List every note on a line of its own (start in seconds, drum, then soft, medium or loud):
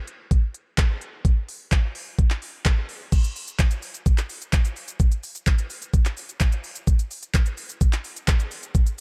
0.07 closed hi-hat medium
0.31 kick loud
0.31 closed hi-hat medium
0.54 closed hi-hat medium
0.78 kick loud
0.78 clap loud
0.78 closed hi-hat medium
1.01 closed hi-hat soft
1.25 kick loud
1.25 closed hi-hat medium
1.49 open hi-hat medium
1.72 kick loud
1.72 clap loud
1.72 closed hi-hat medium
1.95 open hi-hat medium
2.19 kick loud
2.19 closed hi-hat medium
2.30 clap medium
2.42 open hi-hat medium
2.65 kick loud
2.65 clap loud
2.65 closed hi-hat medium
2.89 open hi-hat medium
3.12 kick loud
3.12 closed hi-hat medium
3.12 crash medium
3.12 shaker medium
3.24 closed hi-hat medium
3.24 shaker medium
3.36 open hi-hat medium
3.36 shaker medium
3.48 closed hi-hat medium
3.48 shaker medium
3.59 kick loud
3.59 clap loud
3.59 closed hi-hat medium
3.59 shaker medium
3.71 closed hi-hat medium
3.71 shaker medium
3.82 open hi-hat medium
3.82 shaker medium
3.94 closed hi-hat medium
3.94 shaker medium
4.06 kick loud
4.06 closed hi-hat medium
4.06 shaker medium
4.18 clap medium
4.18 closed hi-hat medium
4.18 shaker medium
4.29 open hi-hat medium
4.29 shaker medium
4.42 closed hi-hat medium
4.42 shaker medium
4.53 kick loud
4.53 clap loud
4.53 closed hi-hat medium
4.53 shaker medium
4.65 closed hi-hat medium
4.65 shaker medium
4.76 open hi-hat medium
4.76 shaker soft
4.88 closed hi-hat medium
4.88 shaker medium
5.00 kick loud
5.00 closed hi-hat medium
5.00 shaker medium
5.12 closed hi-hat medium
5.12 shaker medium
5.23 open hi-hat medium
5.23 shaker medium
5.35 closed hi-hat medium
5.35 shaker medium
5.47 kick loud
5.47 clap loud
5.47 closed hi-hat medium
5.47 shaker medium
5.58 closed hi-hat medium
5.58 shaker medium
5.70 open hi-hat medium
5.70 shaker medium
5.82 closed hi-hat medium
5.82 shaker medium
5.94 kick loud
5.94 closed hi-hat medium
5.94 shaker medium
6.05 clap medium
6.05 closed hi-hat medium
6.05 shaker medium
6.17 open hi-hat medium
6.17 shaker medium
6.29 closed hi-hat medium
6.29 shaker medium
6.40 kick loud
6.40 clap loud
6.40 closed hi-hat medium
6.40 shaker medium
6.52 closed hi-hat medium
6.52 shaker medium
6.64 open hi-hat medium
6.64 shaker medium
6.75 closed hi-hat medium
6.75 shaker medium
6.87 kick loud
6.87 closed hi-hat medium
6.87 shaker medium
6.99 closed hi-hat medium
6.99 shaker medium
7.11 open hi-hat medium
7.11 shaker medium
7.23 closed hi-hat medium
7.23 shaker medium
7.34 kick loud
7.34 clap loud
7.34 closed hi-hat medium
7.34 shaker medium
7.46 closed hi-hat medium
7.46 shaker medium
7.57 open hi-hat medium
7.57 shaker medium
7.69 closed hi-hat medium
7.69 shaker medium
7.81 kick loud
7.81 closed hi-hat medium
7.81 shaker medium
7.93 clap medium
7.93 closed hi-hat medium
7.93 shaker medium
8.04 open hi-hat medium
8.04 shaker medium
8.16 closed hi-hat medium
8.16 shaker medium
8.28 kick loud
8.28 clap loud
8.28 closed hi-hat medium
8.28 shaker medium
8.40 closed hi-hat medium
8.40 shaker medium
8.51 open hi-hat medium
8.51 shaker soft
8.63 closed hi-hat medium
8.63 shaker medium
8.75 kick loud
8.75 closed hi-hat medium
8.75 shaker medium
8.87 closed hi-hat medium
8.87 shaker medium